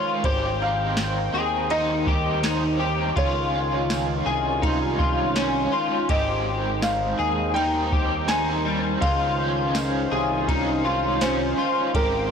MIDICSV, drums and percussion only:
0, 0, Header, 1, 2, 480
1, 0, Start_track
1, 0, Tempo, 731707
1, 158, Time_signature, 4, 2, 24, 8
1, 8075, End_track
2, 0, Start_track
2, 0, Title_t, "Drums"
2, 157, Note_on_c, 9, 51, 63
2, 159, Note_on_c, 9, 36, 127
2, 223, Note_off_c, 9, 51, 0
2, 224, Note_off_c, 9, 36, 0
2, 635, Note_on_c, 9, 38, 106
2, 635, Note_on_c, 9, 54, 65
2, 637, Note_on_c, 9, 51, 55
2, 701, Note_off_c, 9, 38, 0
2, 701, Note_off_c, 9, 54, 0
2, 703, Note_off_c, 9, 51, 0
2, 1117, Note_on_c, 9, 51, 50
2, 1183, Note_off_c, 9, 51, 0
2, 1358, Note_on_c, 9, 36, 105
2, 1424, Note_off_c, 9, 36, 0
2, 1597, Note_on_c, 9, 51, 64
2, 1599, Note_on_c, 9, 38, 117
2, 1600, Note_on_c, 9, 54, 62
2, 1663, Note_off_c, 9, 51, 0
2, 1665, Note_off_c, 9, 38, 0
2, 1665, Note_off_c, 9, 54, 0
2, 2078, Note_on_c, 9, 36, 126
2, 2079, Note_on_c, 9, 51, 61
2, 2144, Note_off_c, 9, 36, 0
2, 2144, Note_off_c, 9, 51, 0
2, 2559, Note_on_c, 9, 38, 100
2, 2559, Note_on_c, 9, 54, 67
2, 2561, Note_on_c, 9, 51, 54
2, 2624, Note_off_c, 9, 38, 0
2, 2624, Note_off_c, 9, 54, 0
2, 2626, Note_off_c, 9, 51, 0
2, 3038, Note_on_c, 9, 36, 91
2, 3040, Note_on_c, 9, 51, 56
2, 3103, Note_off_c, 9, 36, 0
2, 3106, Note_off_c, 9, 51, 0
2, 3278, Note_on_c, 9, 36, 104
2, 3344, Note_off_c, 9, 36, 0
2, 3514, Note_on_c, 9, 51, 62
2, 3516, Note_on_c, 9, 38, 126
2, 3516, Note_on_c, 9, 54, 60
2, 3580, Note_off_c, 9, 51, 0
2, 3582, Note_off_c, 9, 38, 0
2, 3582, Note_off_c, 9, 54, 0
2, 3995, Note_on_c, 9, 51, 67
2, 3998, Note_on_c, 9, 36, 120
2, 4061, Note_off_c, 9, 51, 0
2, 4063, Note_off_c, 9, 36, 0
2, 4477, Note_on_c, 9, 38, 117
2, 4477, Note_on_c, 9, 54, 75
2, 4479, Note_on_c, 9, 51, 54
2, 4542, Note_off_c, 9, 38, 0
2, 4543, Note_off_c, 9, 54, 0
2, 4544, Note_off_c, 9, 51, 0
2, 4961, Note_on_c, 9, 51, 58
2, 5027, Note_off_c, 9, 51, 0
2, 5199, Note_on_c, 9, 36, 97
2, 5265, Note_off_c, 9, 36, 0
2, 5434, Note_on_c, 9, 51, 64
2, 5436, Note_on_c, 9, 38, 127
2, 5436, Note_on_c, 9, 54, 60
2, 5500, Note_off_c, 9, 51, 0
2, 5502, Note_off_c, 9, 38, 0
2, 5502, Note_off_c, 9, 54, 0
2, 5918, Note_on_c, 9, 51, 68
2, 5919, Note_on_c, 9, 36, 117
2, 5983, Note_off_c, 9, 51, 0
2, 5984, Note_off_c, 9, 36, 0
2, 6395, Note_on_c, 9, 38, 107
2, 6395, Note_on_c, 9, 54, 70
2, 6397, Note_on_c, 9, 51, 59
2, 6461, Note_off_c, 9, 38, 0
2, 6461, Note_off_c, 9, 54, 0
2, 6463, Note_off_c, 9, 51, 0
2, 6878, Note_on_c, 9, 36, 75
2, 6879, Note_on_c, 9, 51, 62
2, 6944, Note_off_c, 9, 36, 0
2, 6945, Note_off_c, 9, 51, 0
2, 7355, Note_on_c, 9, 51, 69
2, 7357, Note_on_c, 9, 38, 127
2, 7357, Note_on_c, 9, 54, 71
2, 7420, Note_off_c, 9, 51, 0
2, 7423, Note_off_c, 9, 38, 0
2, 7423, Note_off_c, 9, 54, 0
2, 7837, Note_on_c, 9, 51, 64
2, 7838, Note_on_c, 9, 36, 124
2, 7903, Note_off_c, 9, 36, 0
2, 7903, Note_off_c, 9, 51, 0
2, 8075, End_track
0, 0, End_of_file